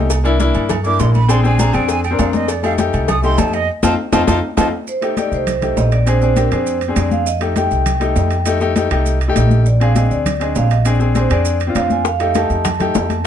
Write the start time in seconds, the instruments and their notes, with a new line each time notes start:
Already playing: upright bass C2
0.10 cowbell, low agogo, maracas
0.24 grand piano A#3 D4 E4, high conga, low agogo, maracas
0.39 grand piano A#3 D4 E4, cowbell, high conga, low timbale, maracas
0.54 upright bass G2, high conga, low agogo, maracas
0.69 cowbell, high conga, low conga, low agogo, maracas
0.84 grand piano A#3 D4 E4, flute D6, high conga, maracas
0.99 upright bass A#1, flute C6, cowbell, high conga, low timbale, low agogo, maracas
1.14 flute B5, high conga, low agogo, maracas
1.28 grand piano C4 D4 G#4, flute C6, cowbell, high conga, low agogo, maracas
1.44 grand piano C4 D4 G#4, flute G#5, high conga, maracas
1.58 grand piano C4 D4 G#4, flute A#5, cowbell, high conga, low timbale, low agogo, maracas
1.73 upright bass F2, grand piano C4 D4 G#4, flute G5, low agogo, maracas
1.89 flute G#5, cowbell, high conga, maracas
2.04 flute G5, high conga, low agogo, maracas
2.11 grand piano C4 D4 A#4
2.19 upright bass F2, flute F5, cowbell, high conga, low timbale, low agogo, maracas
2.33 flute D#5, cowbell, high conga, maracas
2.48 flute D5, cowbell, high conga, low agogo, maracas
2.63 grand piano A3 D#4 G4, flute F5, high conga, low agogo, maracas
2.78 grand piano A3 D#4 G4, cowbell, high conga, low timbale, maracas
2.93 upright bass C2, high conga, low agogo, maracas
3.08 flute D#6, cowbell, high conga, low conga, low agogo, maracas
3.22 grand piano A3 D#4 G4, flute C6, high conga, maracas
3.38 upright bass F2, flute A5, cowbell, high conga, low timbale, low agogo, maracas
3.53 flute D#5, low agogo, maracas
3.83 upright bass F2, grand piano C4 D#4 F4, flute A5, cowbell, high conga, high timbale, maracas
4.12 upright bass F2, grand piano C4 D#4 F4, flute A5, cowbell, high conga, high timbale, maracas
4.27 upright bass F2, grand piano C4 D#4 F4, flute A5, cowbell, high conga, high timbale, maracas
4.57 upright bass F2, grand piano C4 D#4 F4, flute A5, cowbell, high conga, high timbale, maracas
4.87 vibraphone C5, high conga, maracas
5.01 grand piano A3 D#4 G4, vibraphone D#5, high conga, high timbale, maracas
5.16 grand piano A3 D#4 G4, vibraphone D5, high conga, high timbale, low timbale, maracas
5.32 upright bass C2, vibraphone C5, high conga, maracas
5.47 high conga, low conga, high timbale, maracas
5.61 grand piano A3 D#4 G4, high conga, low conga, high timbale, maracas
5.77 upright bass A#1, vibraphone D#5, high conga, low timbale, maracas
5.92 vibraphone D5, high timbale, maracas
6.06 grand piano C4 D4 G#4, vibraphone C5, high conga, high timbale, maracas
6.21 grand piano C4 D4 G#4, vibraphone C5, high conga, maracas
6.36 grand piano C4 D4 G4, vibraphone A#4, high conga, high timbale, low timbale, maracas
6.51 upright bass F2, grand piano C4 D4 G#4, vibraphone C5, high timbale, maracas
6.67 high conga, maracas
6.81 high conga, high timbale, maracas
6.88 grand piano C4 D4 G#4
6.96 upright bass F2, vibraphone D5, high conga, high timbale, low timbale, maracas
7.11 vibraphone F5, high conga, maracas
7.26 vibraphone D#5, high conga, maracas
7.40 grand piano A3 D#4 G4, high conga, high timbale, maracas
7.55 grand piano A3 D#4 G4, vibraphone G5, high conga, high timbale, low timbale, maracas
7.71 upright bass C2, high conga, maracas
7.86 high conga, low conga, high timbale, maracas
8.00 grand piano A3 D#4 G4, high conga, high timbale, maracas
8.16 upright bass F2, high conga, low timbale, maracas
8.30 high timbale, maracas
8.46 grand piano A3 D#4 G4, high conga, high timbale, maracas
8.60 grand piano A3 D#4 G4, high conga, maracas
8.76 grand piano A3 D#4 G4, high conga, high timbale, low timbale, maracas
8.90 upright bass C2, grand piano A3 D#4 G4, high timbale, maracas
9.06 high conga, maracas
9.21 high conga, high timbale, maracas
9.28 grand piano A3 D#4 G4
9.36 upright bass A#1, high conga, high timbale, low timbale, maracas
9.51 high conga, maracas
9.66 vibraphone D5, high conga, maracas
9.80 grand piano C4 D4 G#4, vibraphone F5, high conga, high timbale, maracas
9.95 grand piano C4 D4 G#4, vibraphone D#5, high conga, high timbale, low timbale, maracas
10.11 upright bass D2, vibraphone D5, high conga, maracas
10.26 high conga, low conga, high timbale, maracas
10.40 grand piano C4 D4 G#4, vibraphone D#5, high conga, high timbale, maracas
10.55 upright bass A#1, vibraphone F5, high conga, low timbale, maracas
10.71 vibraphone D#5, high timbale, maracas
10.85 grand piano C4 D4 G#4, vibraphone D5, high conga, high timbale, maracas
10.99 grand piano C4 D4 G#4, high conga, maracas
11.15 grand piano C4 D4 G#4, vibraphone C5, high conga, high timbale, low timbale, maracas
11.29 upright bass F2, grand piano C4 D4 G#4, vibraphone D5, high timbale, maracas
11.45 high conga, maracas
11.60 high conga, high timbale, maracas
11.67 grand piano C4 D4 F4
11.75 upright bass F2, vibraphone F5, high conga, high timbale, low timbale, maracas
11.90 vibraphone G#5, high conga, maracas
12.05 vibraphone F5, high bongo, high conga, maracas
12.20 grand piano A3 D#4 G4, vibraphone F5, high bongo, high conga, high timbale, maracas
12.34 grand piano A3 D#4 G4, vibraphone A5, high bongo, high conga, high timbale, low timbale, maracas
12.50 upright bass F2, high bongo, high conga, maracas
12.65 high bongo, high conga, low conga, high timbale, maracas
12.79 grand piano A3 D#4 G4, high bongo, high conga, low conga, high timbale, maracas
12.95 upright bass F2, high bongo, low bongo, high conga, low timbale, maracas
13.10 high conga, high timbale, maracas